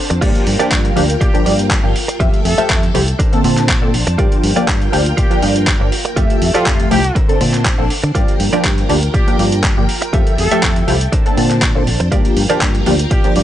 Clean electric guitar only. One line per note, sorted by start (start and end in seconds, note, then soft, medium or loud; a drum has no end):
0.10 muted clean electric guitar stroke medium
0.21 0.41 F4 loud
0.21 0.41 G4 loud
0.21 0.41 A#4 loud
0.21 0.41 D5 loud
0.59 0.78 F4 medium
0.59 0.78 G4 medium
0.59 0.78 A#4 medium
0.59 0.78 D5 loud
0.96 muted clean electric guitar stroke soft
1.21 1.34 F4 medium
1.21 1.34 G4 medium
1.21 1.34 A#4 medium
1.21 1.34 D5 medium
1.46 muted clean electric guitar stroke soft
2.08 muted clean electric guitar stroke loud
2.20 2.39 F4 loud
2.20 2.39 G4 loud
2.20 2.39 A4 loud
2.20 2.39 E5 loud
2.58 2.76 F4 medium
2.58 2.76 G4 medium
2.58 2.77 A4 medium
2.58 2.77 E5 loud
2.94 muted clean electric guitar stroke soft
3.19 3.33 D4 medium
3.19 3.33 A4 medium
3.19 3.33 A#4 medium
3.19 3.33 C5 medium
3.44 muted clean electric guitar stroke soft
4.07 muted clean electric guitar stroke loud
4.18 4.38 F4 loud
4.18 4.38 G4 loud
4.18 4.38 A#4 loud
4.18 4.38 D5 loud
4.56 4.75 F4 medium
4.56 4.75 G4 medium
4.56 4.75 A#4 medium
4.56 4.75 D5 loud
4.93 muted clean electric guitar stroke soft
5.17 5.31 F4 medium
5.17 5.31 G4 medium
5.17 5.31 A#4 medium
5.17 5.31 D5 medium
5.42 muted clean electric guitar stroke soft
6.05 muted clean electric guitar stroke medium
6.16 6.36 F4 loud
6.16 6.36 G4 loud
6.16 6.36 A4 loud
6.16 6.36 E5 loud
6.54 6.73 F4 medium
6.54 6.73 G4 medium
6.54 6.73 A4 medium
6.54 6.73 D5 loud
6.91 muted clean electric guitar stroke soft
7.15 7.29 D4 medium
7.15 7.29 A4 medium
7.15 7.29 A#4 medium
7.15 7.29 C5 medium
7.41 muted clean electric guitar stroke soft
8.04 muted clean electric guitar stroke loud
8.15 8.34 F4 loud
8.15 8.34 G4 loud
8.15 8.34 A#4 loud
8.15 8.34 D5 loud
8.53 8.71 F4 medium
8.53 8.71 G4 medium
8.53 8.71 A#4 medium
8.53 8.71 D5 loud
8.89 muted clean electric guitar stroke soft
9.14 9.28 F4 medium
9.14 9.28 G4 medium
9.14 9.28 A#4 medium
9.14 9.28 D5 medium
9.39 muted clean electric guitar stroke soft
10.02 muted clean electric guitar stroke medium
10.13 10.32 F4 loud
10.13 10.33 G4 loud
10.13 10.33 A4 loud
10.13 10.33 E5 loud
10.51 10.70 F4 medium
10.51 10.70 G4 medium
10.51 10.70 A4 medium
10.51 10.70 E5 medium
10.88 muted clean electric guitar stroke soft
11.12 11.26 D4 medium
11.12 11.26 A4 medium
11.12 11.26 A#4 medium
11.12 11.26 C5 medium
11.37 muted clean electric guitar stroke soft
12.00 muted clean electric guitar stroke loud
12.12 12.31 F4 loud
12.12 12.31 G4 loud
12.12 12.31 A#4 medium
12.12 12.31 D5 loud
12.50 12.68 F4 medium
12.50 12.68 G4 medium
12.50 12.68 A#4 medium
12.50 12.68 D5 loud
12.86 muted clean electric guitar stroke soft
13.11 13.24 F4 loud
13.11 13.24 G4 medium
13.11 13.24 A#4 medium
13.11 13.24 D5 medium
13.36 muted clean electric guitar stroke soft